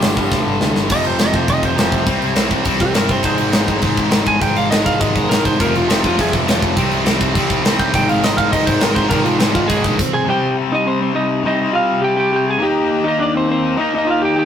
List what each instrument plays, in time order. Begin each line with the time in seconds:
Already playing: distorted electric guitar G2 D3 G3, lead electric guitar G4 G5
0.02 picked electric bass G1, snare, open hi-hat
0.16 picked electric bass G1, distorted electric guitar G2 D3 G3, kick
0.32 picked electric bass D2, kick, snare
0.47 picked electric bass G1
0.61 picked electric bass D2, snare
0.76 picked electric bass G1, snare
0.90 picked electric bass F1, distorted electric guitar F2 C3 F3, lead electric guitar D#5, kick, crash
1.05 picked electric bass F1, lead electric guitar C5, crash
1.19 picked electric bass F1, distorted electric guitar F2 C3 F3, lead electric guitar D#5, snare, crash
1.33 picked electric bass F1, lead electric guitar C5, kick, crash
1.48 picked electric bass F1, distorted electric guitar F2 C3 F3, lead electric guitar D#5, kick, crash
1.63 picked electric bass F1, lead electric guitar C5, kick, crash
1.76 picked electric bass F1, distorted electric guitar F2 C3 F3, lead electric guitar C5, snare, crash
1.92 picked electric bass F1, kick, crash
2.05 picked electric bass C2, distorted electric guitar C3 G3 C4, kick, crash
2.22 picked electric bass C2, crash
2.35 picked electric bass C2, distorted electric guitar C3 G3 C4, snare, crash
2.50 picked electric bass C2, kick, crash
2.64 picked electric bass C2, distorted electric guitar C3 G3 C4, kick, crash
2.80 picked electric bass C2, lead electric guitar G4, kick, crash
2.94 picked electric bass G1, distorted electric guitar C3 G3 C4, lead electric guitar A#4, snare, crash
3.09 lead electric guitar C5, kick, crash
3.23 distorted electric guitar G#2 D#3 G#3, lead electric guitar C5, kick, crash
3.38 picked electric bass G#1, crash
3.52 picked electric bass G#1, distorted electric guitar G#2 D#3 G#3, snare, crash
3.68 picked electric bass G#1, kick, crash
3.82 picked electric bass G#1, distorted electric guitar G#2 D#3 G#3, kick, crash
3.97 picked electric bass G#1, kick, crash
4.11 picked electric bass G#1, distorted electric guitar G#2 D#3 G#3, snare, crash
4.26 picked electric bass G#1, lead electric guitar G#5, kick, crash
4.40 picked electric bass G#1, distorted electric guitar G#2 D#3 G#3, lead electric guitar G5, kick, crash
4.56 picked electric bass G#1, lead electric guitar F5, crash
4.71 picked electric bass G#1, distorted electric guitar G#2 D#3 G#3, lead electric guitar D#5, snare, crash
4.86 picked electric bass G#1, lead electric guitar F5, kick, crash
5.01 picked electric bass G#1, distorted electric guitar G#2 D#3 G#3, lead electric guitar D#5, kick, crash
5.15 picked electric bass G#1, lead electric guitar C5, kick, crash
5.29 picked electric bass G#1, distorted electric guitar G#2 D#3 G#3, lead electric guitar A#4, snare, crash
5.45 lead electric guitar C5, kick, crash
5.59 picked electric bass F1, distorted electric guitar F2 C3 F3 G#3 C4 F4, lead electric guitar A#4, kick, crash
5.75 picked electric bass F1, lead electric guitar F4, crash
5.89 picked electric bass F1, distorted electric guitar F2 C3 F3, lead electric guitar D#4, snare, crash
6.04 picked electric bass F1, lead electric guitar F4, kick, crash
6.18 picked electric bass F1, distorted electric guitar F2 C3 F3, lead electric guitar G#4, kick, crash
6.33 picked electric bass F1, kick, crash
6.47 picked electric bass F1, distorted electric guitar F2 C3 F3, snare, crash
6.62 picked electric bass F1, kick, crash
6.76 picked electric bass C2, distorted electric guitar C3 G3 C4 D#4, kick, crash
6.91 picked electric bass C2, crash
7.04 picked electric bass C2, distorted electric guitar C3 G3 C4, snare, crash
7.21 picked electric bass C2, kick, crash
7.34 picked electric bass C2, distorted electric guitar C3 G3 C4, kick, crash
7.50 picked electric bass C2, kick, crash
7.63 picked electric bass C2, distorted electric guitar C3 G3 C4, snare, crash
7.79 lead electric guitar G5, kick, crash
7.94 picked electric bass G#1, distorted electric guitar G#2 D#3 G#3 C4 D#4, lead electric guitar G5, kick, crash
8.09 picked electric bass G#1, lead electric guitar F5, crash
8.23 picked electric bass G#1, distorted electric guitar G#2 D#3 G#3, lead electric guitar D#5, snare, crash
8.37 picked electric bass G#1, lead electric guitar F5, kick, crash
8.52 picked electric bass G#1, distorted electric guitar G#2 D#3 G#3, lead electric guitar D#5, kick, crash
8.66 picked electric bass G#1, lead electric guitar C5, kick, crash
8.81 picked electric bass G#1, distorted electric guitar G#2 D#3 G#3, lead electric guitar A#4, snare, crash
8.95 picked electric bass G#1, lead electric guitar C5, kick, crash
9.10 picked electric bass G#1, distorted electric guitar G#2 D#3 G#3 C4 D#4, lead electric guitar A#4, kick, crash
9.24 picked electric bass G#1, lead electric guitar F4, crash
9.39 picked electric bass G#1, distorted electric guitar G#2 D#3 G#3, lead electric guitar D#4, snare, crash
9.55 picked electric bass G#1, lead electric guitar F4, kick, crash
9.68 picked electric bass G#1, distorted electric guitar G#2 D#3 G#3, lead electric guitar G#4, kick, crash
9.84 picked electric bass A#1, kick, crash
9.99 kick, crash
10.13 lead electric guitar G#4 G#5
10.25 distorted electric guitar C3 G3, lead electric guitar G4
10.29 distorted electric guitar C4, lead electric guitar G5
10.72 lead electric guitar D#4 D#5
10.86 lead electric guitar C4 C5
11.01 lead electric guitar C4 C5
11.15 lead electric guitar D#4 D#5
11.43 distorted electric guitar C3 G3 C4, lead electric guitar D#4 D#5
11.73 lead electric guitar F4 F5
12.02 lead electric guitar G4 G5
12.17 lead electric guitar G4 G5
12.33 lead electric guitar G4 G5
12.48 lead electric guitar G#4 G#5
12.58 distorted electric guitar D#3 A#3 D#4
12.63 lead electric guitar G4 G5
13.04 lead electric guitar D#4 D#5
13.19 lead electric guitar D4 D5
13.35 lead electric guitar C4 C5
13.48 lead electric guitar C4 C5
13.76 distorted electric guitar D#3 A#3 D#4, lead electric guitar D#4
13.81 lead electric guitar D#5
13.95 lead electric guitar D#4 D#5
14.07 lead electric guitar F4 F5
14.22 lead electric guitar G4 G5
14.36 lead electric guitar G4 G5